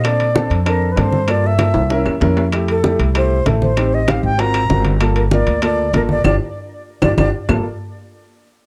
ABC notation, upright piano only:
X:1
M:4/4
L:1/8
Q:1/4=193
K:Gm
V:1 name="Upright piano"
[CDA] z [CDA] z [CDA] z [CDA] z | [B,FA] z [B,FA] z [_D=EB] z [DEB] z | [A,=EG] z [A,EG] z [A,EG] z [A,EA] z | [CEG] z [CEG] z [CF_GB] z [CFGB] z |
[B,FA] z [B,FB] z [B,FA] z [B,FA] z | [DFG] z4 [DFG] [DFG] z | [B,FA] z6 z |]